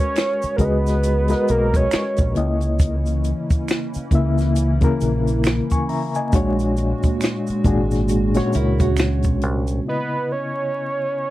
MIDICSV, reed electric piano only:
0, 0, Header, 1, 2, 480
1, 0, Start_track
1, 0, Tempo, 882353
1, 1523, Time_signature, 4, 2, 24, 8
1, 6148, End_track
2, 0, Start_track
2, 0, Title_t, "Reed electric piano"
2, 0, Program_c, 0, 4
2, 0, Control_c, 0, 64, 127
2, 0, Note_on_c, 0, 56, 72
2, 0, Note_on_c, 0, 66, 63
2, 0, Note_on_c, 0, 70, 62
2, 0, Note_on_c, 0, 71, 66
2, 0, Note_on_c, 0, 73, 81
2, 233, Note_off_c, 0, 56, 0
2, 235, Note_off_c, 0, 66, 0
2, 236, Note_off_c, 0, 70, 0
2, 238, Note_off_c, 0, 71, 0
2, 258, Note_off_c, 0, 73, 0
2, 317, Note_on_c, 0, 56, 72
2, 321, Note_on_c, 0, 66, 69
2, 326, Note_on_c, 0, 68, 65
2, 329, Note_on_c, 0, 71, 69
2, 332, Note_on_c, 0, 75, 79
2, 637, Note_off_c, 0, 56, 0
2, 639, Note_off_c, 0, 66, 0
2, 642, Note_off_c, 0, 68, 0
2, 643, Note_off_c, 0, 71, 0
2, 645, Note_off_c, 0, 75, 0
2, 700, Note_on_c, 0, 56, 67
2, 705, Note_on_c, 0, 66, 68
2, 709, Note_on_c, 0, 70, 65
2, 711, Note_on_c, 0, 71, 72
2, 716, Note_on_c, 0, 75, 79
2, 1277, Note_on_c, 0, 49, 63
2, 1281, Note_off_c, 0, 56, 0
2, 1281, Note_on_c, 0, 58, 66
2, 1283, Note_off_c, 0, 66, 0
2, 1285, Note_off_c, 0, 70, 0
2, 1285, Note_off_c, 0, 75, 0
2, 1286, Note_off_c, 0, 71, 0
2, 1287, Note_on_c, 0, 64, 66
2, 1290, Control_c, 0, 64, 0
2, 1291, Note_on_c, 0, 75, 73
2, 1370, Control_c, 0, 64, 127
2, 2113, Note_off_c, 0, 49, 0
2, 2115, Note_off_c, 0, 58, 0
2, 2118, Note_off_c, 0, 64, 0
2, 2120, Note_off_c, 0, 75, 0
2, 2241, Note_on_c, 0, 49, 79
2, 2248, Note_on_c, 0, 58, 80
2, 2250, Note_on_c, 0, 64, 73
2, 2258, Note_on_c, 0, 76, 87
2, 2559, Note_off_c, 0, 49, 0
2, 2563, Note_off_c, 0, 58, 0
2, 2564, Note_off_c, 0, 64, 0
2, 2568, Note_off_c, 0, 76, 0
2, 2617, Note_on_c, 0, 49, 91
2, 2624, Note_on_c, 0, 58, 87
2, 2628, Note_on_c, 0, 64, 81
2, 2633, Note_on_c, 0, 70, 104
2, 3109, Note_on_c, 0, 85, 71
2, 3112, Note_on_c, 0, 80, 55
2, 3200, Note_off_c, 0, 85, 0
2, 3202, Note_off_c, 0, 80, 0
2, 3204, Note_on_c, 0, 82, 61
2, 3207, Note_on_c, 0, 76, 48
2, 3333, Note_off_c, 0, 49, 0
2, 3337, Note_off_c, 0, 58, 0
2, 3338, Note_off_c, 0, 82, 0
2, 3339, Note_off_c, 0, 64, 0
2, 3339, Note_off_c, 0, 76, 0
2, 3342, Note_off_c, 0, 70, 0
2, 3350, Note_on_c, 0, 80, 59
2, 3353, Note_on_c, 0, 75, 50
2, 3442, Note_on_c, 0, 46, 79
2, 3445, Note_on_c, 0, 56, 76
2, 3450, Control_c, 0, 64, 0
2, 3450, Note_on_c, 0, 62, 80
2, 3453, Note_on_c, 0, 66, 81
2, 3457, Note_on_c, 0, 73, 89
2, 3529, Control_c, 0, 64, 127
2, 3575, Note_off_c, 0, 80, 0
2, 3577, Note_off_c, 0, 75, 0
2, 4073, Note_off_c, 0, 46, 0
2, 4075, Note_off_c, 0, 56, 0
2, 4078, Note_off_c, 0, 62, 0
2, 4079, Note_off_c, 0, 66, 0
2, 4081, Note_off_c, 0, 73, 0
2, 4159, Note_on_c, 0, 46, 83
2, 4164, Note_on_c, 0, 56, 76
2, 4166, Note_on_c, 0, 62, 77
2, 4169, Note_on_c, 0, 66, 76
2, 4174, Note_on_c, 0, 68, 92
2, 4479, Note_off_c, 0, 46, 0
2, 4481, Note_off_c, 0, 56, 0
2, 4482, Note_off_c, 0, 62, 0
2, 4484, Note_off_c, 0, 66, 0
2, 4486, Note_off_c, 0, 68, 0
2, 4541, Note_on_c, 0, 46, 79
2, 4544, Note_on_c, 0, 56, 82
2, 4547, Note_on_c, 0, 61, 78
2, 4550, Note_on_c, 0, 66, 79
2, 4553, Note_on_c, 0, 73, 95
2, 5255, Note_off_c, 0, 46, 0
2, 5257, Note_off_c, 0, 56, 0
2, 5258, Note_off_c, 0, 61, 0
2, 5260, Note_off_c, 0, 66, 0
2, 5261, Note_off_c, 0, 73, 0
2, 5348, Note_on_c, 0, 49, 52
2, 5358, Note_on_c, 0, 59, 46
2, 5367, Note_on_c, 0, 64, 46
2, 5369, Control_c, 0, 64, 0
2, 5377, Note_on_c, 0, 75, 59
2, 5454, Control_c, 0, 64, 127
2, 6148, Note_off_c, 0, 49, 0
2, 6148, Note_off_c, 0, 59, 0
2, 6148, Note_off_c, 0, 64, 0
2, 6148, Note_off_c, 0, 75, 0
2, 6148, End_track
0, 0, End_of_file